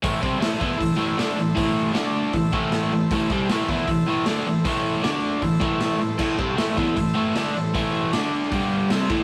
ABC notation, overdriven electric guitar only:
X:1
M:4/4
L:1/8
Q:1/4=156
K:Am
V:1 name="Overdriven electric guitar" clef=bass
[A,,E,A,] [C,G,C] [A,,E,A,] [E,B,E] [A,,E,] [A,,E,A,] [D,A,D] [A,,E,] | [A,,E,A,]2 [D,A,D]2 [A,,E,] [A,,E,A,]2 [A,,E,] | [A,,E,A,] [C,G,C] [A,,E,A,] [E,B,E] [A,,E,] [A,,E,A,] [D,A,D] [A,,E,] | [A,,E,A,]2 [D,A,D]2 [A,,E,] [A,,E,A,]2 [A,,E,] |
[A,,E,A,] [C,G,C] [A,,E,A,] [E,B,E] [A,,E,] [A,,E,A,] [D,A,D] [A,,E,] | [A,,E,A,]2 [D,A,D]2 [G,,D,G,]2 [C,G,C] [A,,E,A,] |]